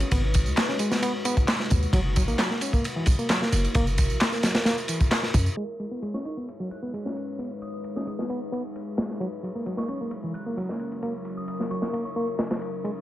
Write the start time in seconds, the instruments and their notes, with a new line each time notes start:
Already playing: ambient pad G#3 D#4 F#4 B4, reed electric piano C#4
0.00 ride, tambourine
0.11 808-style bass G#1, reed electric piano B3, kick, ride, tambourine
0.34 kick, ride, tambourine
0.46 808-style bass C#2, tambourine
0.57 snare, clap, ride, tambourine
0.69 reed electric piano C#4, snare
0.79 reed electric piano G#3, ride, tambourine
0.91 reed electric piano B3, snare, tambourine
1.02 reed electric piano B3, ride, tambourine
1.25 reed electric piano B3, ride, tambourine
1.37 kick, tambourine
1.48 snare, clap, ride, tambourine
1.60 snare
1.70 808-style bass D#2, kick, ride, tambourine
1.83 tambourine
1.93 808-style bass F#1, reed electric piano F#3, ambient pad E4 A#4, kick, ride, tambourine
2.16 reed electric piano F#3, kick, ride, tambourine
2.28 808-style bass A#1, reed electric piano A#3, tambourine
2.39 reed electric piano F#3, snare, clap, ride, tambourine
2.51 reed electric piano A#3, snare
2.61 reed electric piano C#4, ride, tambourine
2.73 reed electric piano A#3, kick, tambourine
2.84 ride, tambourine
2.96 reed electric piano E3
3.06 808-style bass A#1, kick, ride, tambourine
3.19 reed electric piano A#3, tambourine
3.29 reed electric piano F#3, snare, clap, ride, tambourine
3.42 reed electric piano A#3, snare
3.52 808-style bass F#1, ride, tambourine
3.64 ride, tambourine
3.74 808-style bass F#1, reed electric piano A#3, ambient pad G#4, kick, ride, tambourine
3.87 tambourine
3.98 kick, ride, tambourine
4.09 808-style bass A#1, tambourine
4.20 snare, clap, ride, tambourine
4.32 reed electric piano A#3, snare, tambourine
4.43 reed electric piano F#3, snare, ride, tambourine
4.55 reed electric piano A#3, snare, ride, tambourine
4.65 reed electric piano A#3, snare, ride, tambourine
4.78 tambourine
4.88 reed electric piano E3, ride, tambourine
5.00 kick, tambourine
5.11 snare, clap, ride, tambourine
5.23 snare
5.34 808-style bass F#2, kick, ride, tambourine
5.46 tambourine
5.57 reed electric piano G#3, ambient pad G#3 D#4 F#4 B4, ride
5.79 reed electric piano G#3, ride
5.91 reed electric piano B3
6.02 reed electric piano G#3, ride
6.14 reed electric piano C#4, synth bell C#6, snare
6.25 reed electric piano D#4, synth bell C#6, ride
6.37 reed electric piano B3
6.48 ride
6.60 reed electric piano F#3
6.71 synth bell F#6, ride
6.82 reed electric piano B3
6.93 reed electric piano G#3, ride
7.05 reed electric piano C#4, snare
7.16 ride
7.28 ride
7.39 reed electric piano B3, ambient pad G#4, ride
7.62 synth bell D#6, ride
7.74 synth bell D#6
7.84 ride
7.96 reed electric piano C#4, synth bell D#6, snare
8.07 reed electric piano G#3, synth bell D#6, ride
8.19 reed electric piano B3, snare
8.30 reed electric piano B3, ride
8.52 reed electric piano B3, ride
8.76 ride
8.97 snare, ride
9.10 snare
9.20 reed electric piano F#3, ambient pad F#3 C#4 E4 A#4, ride
9.43 reed electric piano F#3, ride
9.55 reed electric piano A#3
9.66 reed electric piano F#3, ride
9.77 reed electric piano A#3, synth bell C#6, snare
9.88 reed electric piano C#4, synth bell C#6, ride
10.01 reed electric piano A#3
10.11 ride
10.24 reed electric piano E3
10.34 synth bell F#6, ride
10.46 reed electric piano A#3
10.57 reed electric piano F#3, ride
10.69 reed electric piano A#3, snare
10.79 ride
10.92 ride
11.02 reed electric piano A#3, ambient pad D#4, ride
11.25 ride
11.37 synth bell D#6
11.48 synth bell D#6, ride
11.60 reed electric piano A#3, snare
11.71 reed electric piano F#3, synth bell C#6, ride
11.82 reed electric piano A#3, synth bell C#6, snare
11.93 reed electric piano A#3, ride
12.05 synth bell C#6
12.16 reed electric piano A#3, synth bell C#6
12.39 snare, ride
12.50 snare, ride
12.61 ride
12.84 reed electric piano G#3, ambient pad G#3 D#4 F#4 B4, ride